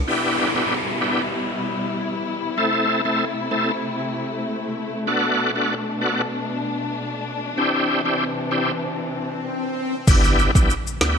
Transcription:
0.07 string section B2 G3 E4, tonewheel organ B3 D4 E4 G4, downlifter
0.55 tonewheel organ B3 D4 E4 G4
1.01 tonewheel organ B3 D4 E4 G4
2.57 string section C3 A3, tonewheel organ A3 C4 E4 A4
3.05 tonewheel organ A3 C4 E4 A4
3.51 tonewheel organ A3 C4 E4 A4
5.07 string section B2 D4, tonewheel organ B3 D4 F#4 A4, swell
5.55 tonewheel organ B3 D4 F#4 A4
6.01 tonewheel organ B3 D4 F#4 A4
7.57 string section C3 E3, tonewheel organ C4 D4 E4 G4
8.05 tonewheel organ C4 D4 E4 G4
8.51 tonewheel organ C4 D4 E4 G4
10.07 sub bass G1, tonewheel organ B3 D4 E4 G4, kick, crash, impact, maracas
10.24 maracas
10.39 maracas
10.55 sub bass B1, tonewheel organ B3 D4 E4 G4, kick, maracas
10.70 maracas
10.87 maracas
11.01 sub bass D2, tonewheel organ B3 D4 E4 G4, snare

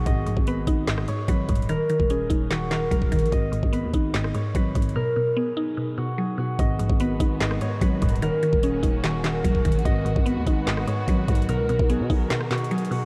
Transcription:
Already playing: harp F#4 G#4 A#4
0.06 808-style bass G#1, synth pluck G#2, harp D#5, kick, closed hi-hat
0.26 808-style bass A#1, synth pluck G#2, closed hi-hat
0.37 808-style bass G#1, kick
0.47 synth pluck B3, harp B4, closed hi-hat
0.67 808-style bass G#1, synth pluck D#4, kick, closed hi-hat
0.87 synth pluck G#2, harp D#5, snare, clap, closed hi-hat
0.98 cross-stick
1.08 synth pluck G#2, harp C#5, closed hi-hat
1.28 808-style bass G#1, synth pluck F#3, harp B4, kick, closed hi-hat
1.49 808-style bass D#1, synth pluck G#2, kick, closed hi-hat
1.56 closed hi-hat
1.62 closed hi-hat
1.69 synth pluck D#3, harp A#4, closed hi-hat
1.90 synth pluck D#3, closed hi-hat
2.00 808-style bass D#1, kick
2.10 synth pluck C#4, harp G#4, closed hi-hat
2.30 808-style bass D#1, synth pluck D#4, kick, closed hi-hat
2.51 synth pluck D#3, harp F#4, snare, clap, closed hi-hat
2.71 synth pluck D#3, harp A#4, snare, clap, closed hi-hat
2.91 808-style bass D#1, synth pluck F#3, harp A#4, kick, closed hi-hat
3.02 kick
3.12 synth pluck D#3, kick, closed hi-hat
3.19 808-style bass A#1, closed hi-hat
3.26 closed hi-hat
3.32 808-style bass G#1, synth pluck G#2, harp D#5, kick, closed hi-hat
3.52 synth pluck G#2, closed hi-hat
3.63 808-style bass G#1, kick
3.73 synth pluck B3, harp B4, closed hi-hat
3.84 808-style bass D#2
3.94 808-style bass G#1, synth pluck D#4, kick, closed hi-hat
4.14 synth pluck G#2, harp D#5, snare, clap, closed hi-hat
4.24 cross-stick
4.34 synth pluck G#2, harp C#5, closed hi-hat
4.55 808-style bass G#1, synth pluck F#3, harp B4, kick, closed hi-hat
4.75 808-style bass G#1, synth pluck G#2, kick, closed hi-hat
4.82 closed hi-hat
4.89 closed hi-hat
4.95 synth pluck B2, harp A#4
5.16 synth pluck B2
5.36 synth pluck B3, harp G#4
5.57 synth pluck D#4
5.77 synth pluck B2
5.98 synth pluck B2, harp F#4
6.18 synth pluck F#3, harp G#4
6.38 synth pluck B2, harp F#4
6.59 808-style bass G#1, synth pluck G#2, string section D#3 G#3 B3 F#4, harp D#5, kick, closed hi-hat
6.79 808-style bass A#1, synth pluck G#2, closed hi-hat
6.90 808-style bass G#1, kick
7.00 synth pluck B3, harp B4, closed hi-hat
7.20 808-style bass G#1, synth pluck D#4, kick, closed hi-hat
7.40 synth pluck G#2, harp D#5, snare, clap, closed hi-hat
7.51 cross-stick
7.61 synth pluck G#2, harp C#5, closed hi-hat
7.81 808-style bass G#1, synth pluck F#3, harp B4, kick, closed hi-hat
8.02 808-style bass D#1, synth pluck G#2, kick, closed hi-hat
8.09 closed hi-hat
8.15 closed hi-hat
8.22 synth pluck D#3, string section A#3 C#4, harp A#4, closed hi-hat
8.43 synth pluck D#3, closed hi-hat
8.53 808-style bass D#1, kick
8.63 synth pluck C#4, harp G#4, closed hi-hat
8.83 808-style bass D#1, synth pluck D#4, kick, closed hi-hat
9.04 synth pluck D#3, harp F#4, snare, clap, closed hi-hat
9.24 synth pluck D#3, harp A#4, snare, clap, closed hi-hat
9.44 808-style bass D#1, synth pluck F#3, harp A#4, kick, closed hi-hat
9.55 kick
9.65 synth pluck D#3, kick, closed hi-hat
9.72 808-style bass A#1, closed hi-hat
9.79 closed hi-hat
9.85 808-style bass G#1, synth pluck G#2, string section D#3 G#3 B3, harp D#5, kick, closed hi-hat
10.05 synth pluck G#2, closed hi-hat
10.16 808-style bass G#1, kick
10.26 synth pluck B3, harp B4, closed hi-hat
10.37 808-style bass D#2
10.47 808-style bass G#1, synth pluck D#4, kick, closed hi-hat
10.67 synth pluck G#2, harp D#5, snare, clap, closed hi-hat
10.77 cross-stick
10.88 synth pluck G#2, harp C#5, closed hi-hat
11.08 808-style bass G#1, synth pluck F#3, harp B4, kick, closed hi-hat
11.28 808-style bass B1, synth pluck G#2, kick, closed hi-hat
11.35 closed hi-hat
11.42 closed hi-hat
11.48 synth pluck B2, string section B3 A#4, harp A#4, closed hi-hat
11.59 808-style bass C#2
11.69 808-style bass B1, synth pluck B2, closed hi-hat
11.79 808-style bass B1, kick
11.90 synth pluck B3, harp G#4, closed hi-hat
12.00 808-style bass B2
12.10 808-style bass B1, synth pluck D#4, kick, open hi-hat
12.30 synth pluck B2, snare, clap, closed hi-hat
12.41 cross-stick
12.51 synth pluck B2, harp F#4, snare, clap, closed hi-hat
12.58 closed hi-hat
12.64 closed hi-hat
12.71 synth pluck F#3, harp G#4, closed hi-hat
12.78 closed hi-hat
12.85 closed hi-hat
12.91 synth pluck B2, harp F#4, open hi-hat

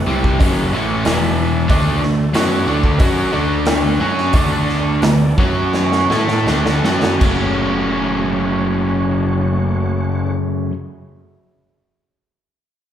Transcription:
Already playing: tonewheel organ F#4 A4 F#5
0.07 picked electric bass C2, overdriven electric guitar C3 G3 C4
0.24 kick
0.39 picked electric bass F#1, overdriven electric guitar F#2 C#3 F#3, kick, open hi-hat, cowbell
0.73 picked electric bass A1, overdriven electric guitar A2 E3 A3, cowbell
1.04 picked electric bass E1, overdriven electric guitar E2 B2 E3, tonewheel organ E4 B4 E5, snare, open hi-hat, cowbell
1.69 picked electric bass D2, overdriven electric guitar D3 A3 D4, tonewheel organ D3 A4, kick, open hi-hat, cowbell
2.02 picked electric bass D2, overdriven electric guitar D3 A3, snare
2.33 picked electric bass F#2, overdriven electric guitar F#3 C#4 F#4, snare, open hi-hat, cowbell
2.66 picked electric bass D2, overdriven electric guitar D3 A3 D4
2.83 kick
2.99 picked electric bass F#2, overdriven electric guitar F#3 C#4 F#4, kick, open hi-hat, cowbell
3.32 picked electric bass D2, overdriven electric guitar D3 A3 D4, cowbell
3.65 snare, open hi-hat, cowbell
4.00 picked electric bass F#2, overdriven electric guitar F#3 C#4 F#4
4.18 snare
4.33 picked electric bass D2, overdriven electric guitar D3 A3 D4, tonewheel organ D4 A4 D5, kick, open hi-hat, cowbell
4.69 snare
5.02 picked electric bass D2, overdriven electric guitar D3 A3, snare, open hi-hat, cowbell
5.38 picked electric bass F#2, overdriven electric guitar F#3 C#4 F#4, tonewheel organ C#4 F#4 C#5, kick
5.73 snare, cowbell
5.92 snare
6.08 picked electric bass A2, tonewheel organ D3 A4, overdriven electric guitar A3 E4 A4, snare, cowbell
6.28 snare
6.46 picked electric bass D2, overdriven electric guitar D3 A3 D4, snare, cowbell
6.66 snare
6.83 picked electric bass F#2, overdriven electric guitar F#3 C#4 F#4, snare
7.03 snare
7.20 picked electric bass F#1, overdriven electric guitar F#2 C#3 F#3 A3 C#4, tonewheel organ A3 C#4 F#4 C#5, kick, crash, cowbell

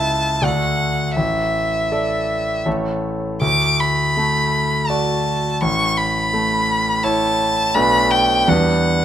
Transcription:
Already playing: grand piano C#2 E4 E5, violin A5
0.42 grand piano D2 A3 A4 D5, violin F#5
1.16 grand piano A1, violin E5
1.92 grand piano A4 D5
2.66 grand piano A1 A3 A4 C#5
3.41 grand piano D2, violin D6
3.80 violin B5
4.17 grand piano A3
4.88 grand piano F#4 D5, violin A5
5.62 grand piano A1, violin C#6
5.97 violin B5
6.33 grand piano A3
7.03 grand piano E4 C#5, violin A5
7.74 grand piano B1 A3 D4 B4, violin B5
8.11 violin G5
8.48 grand piano E2 G3 D4 B4, violin F#5

